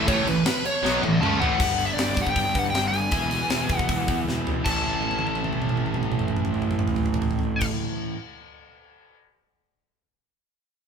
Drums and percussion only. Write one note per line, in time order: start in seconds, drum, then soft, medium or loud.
0.08 kick loud
0.08 crash medium
0.27 crash medium
0.46 snare loud
0.46 crash medium
0.65 crash medium
0.85 snare medium
1.04 high tom medium
1.23 mid tom medium
1.42 floor tom medium
1.60 kick loud
1.60 crash loud
1.79 open hi-hat medium
1.99 snare loud
1.99 open hi-hat medium
2.17 kick loud
2.17 open hi-hat medium
2.27 kick medium
2.36 kick loud
2.36 open hi-hat medium
2.55 kick medium
2.55 open hi-hat medium
2.75 snare loud
2.75 open hi-hat medium
2.94 open hi-hat soft
3.12 kick loud
3.12 open hi-hat medium
3.31 open hi-hat medium
3.50 snare loud
3.50 open hi-hat medium
3.69 kick loud
3.69 open hi-hat medium
3.79 kick medium
3.89 kick loud
3.89 open hi-hat medium
4.08 kick medium
4.08 open hi-hat medium
4.29 snare soft
4.47 floor tom medium
4.66 kick loud
4.66 crash medium
4.86 high tom soft
4.94 high tom soft
5.02 high tom soft
5.11 high tom soft
5.19 high tom medium
5.27 high tom medium
5.35 high tom medium
5.44 high tom medium
5.53 mid tom medium
5.62 mid tom medium
5.69 mid tom medium
5.77 mid tom medium
5.86 mid tom medium
5.94 mid tom medium
6.03 mid tom medium
6.12 mid tom medium
6.19 mid tom medium
6.28 mid tom medium
6.37 mid tom medium
6.45 mid tom medium
6.54 mid tom medium
6.62 mid tom medium
6.71 mid tom medium
6.79 mid tom medium
6.88 floor tom medium
6.96 floor tom medium
7.06 floor tom medium
7.14 floor tom loud
7.22 floor tom medium
7.31 floor tom medium
7.39 floor tom medium
7.61 kick loud
7.61 crash medium